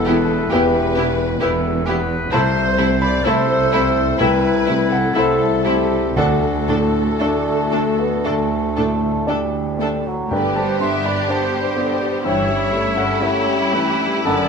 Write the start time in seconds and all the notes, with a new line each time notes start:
Already playing: E1 E2 B2 B3 E4 G4 A4 B4 E5 F#5
0.06 B3 E4 G4 B4
0.51 E1 E2 B3 E4 G4 B4 E5 G5
0.96 B2 B3 E4 G4
1.41 E1 E2 B3 E4 G4 A4 B4
1.87 B3 E4 G4 B4
2.32 C2 A3 E4 C5 E5 A5
2.78 C3 A3 E4
3.02 D5 B5
3.24 C2 A3 E4 A4 C5 E5 A5
3.73 A3 C4 E4
4.19 C2 A3 E4 B4 G5
4.66 C3 A3 E4
4.89 A4 F#5
5.15 C2 A3 E4 A4 C5 E5
5.64 A3 C4 E4 G4
6.15 D2 D3 A3 D4 F#4 A4 D5 F#5
6.68 A2 A3 D4 A4
7.19 D2 A3 D4 A4 D5
7.73 A3 D4 A4
8.00 B3
8.25 D2 A3 D4 A4
8.77 A2 A3 D4 A4
9.27 D2 G3 A3 D4 A4 D5
9.79 A3 D4 A4
10.07 F#3
10.31 G1 G2 D3 B3 D4 G4 B4 D5 G5
10.56 G3 C5 A5
10.80 D3 B3 E5 C6
11.05 D4 D5 B5
11.28 B3 D4 C5 D5 A5
11.55 G3
11.76 D3 B3 D5
12.02 G3
12.24 G1 G2 E3 A3 C#4 E4 C#5 E5 G5
12.49 G3
12.72 G3 A3
12.97 C#4 A4 F#5
13.21 A3 E4 G4 A4 C#5 E5
13.48 G3
13.73 E3 A3 B4
14.01 G3
14.25 F#1 F#2 D3 D4 A4 D5 F#5 A5